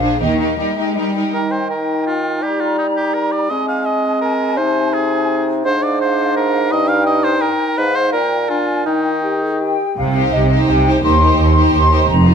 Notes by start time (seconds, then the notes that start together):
Already playing: A#1 A#2 F5
0.02 D4 G#4 C5
0.20 D#2 D#3 D#4 G4 A#4 D#5
0.39 D#4 G4 A#4
0.58 G3 D#4 G4 A#4
0.78 G#3 D#4 G4 A#4
0.96 G3 D#4 G4 A#4
1.15 D#4 G4 A#4
1.33 D#3 D#4 A#4 G5
1.51 C5
1.70 A#4
2.07 F4
2.42 G3 G4 A#5
2.60 F4
2.78 D#4
2.96 G4
3.14 A#4
3.31 D5
3.50 G#3 C4 D#5 G#5
3.68 F5
3.86 D#5
4.21 A#4
4.57 C3 D#4 C5
4.93 G#4
5.65 G#2 D4 C5 F5
5.83 D5
6.01 C5
6.36 A#4
6.70 G2 D#4 D#5 G5
6.89 F5
7.06 D#5
7.24 C5
7.41 A#4
7.77 G#2 B4 F5
7.95 C5
8.12 A#2 A#4 G5
8.49 D4 F4 G#5
8.86 D#3 D#4 G5
9.24 G4
9.43 G#4
9.60 G4 G5
9.98 C2 C3 F5
10.15 D#4 G4 C5
10.33 C2 C3 D#5
10.50 D#4 G4 C5
10.69 C2 C3 G5
10.86 D#4 G4 C5
11.04 D#2 D#4 G4 C5 C6
11.21 D#4 G4 C5
11.39 D#2 C6
11.56 D#4 G4 C5
11.74 D#2 C6
11.91 D#4 G4 C5
12.09 F1 F2 A#5
12.26 D#4 F4 C5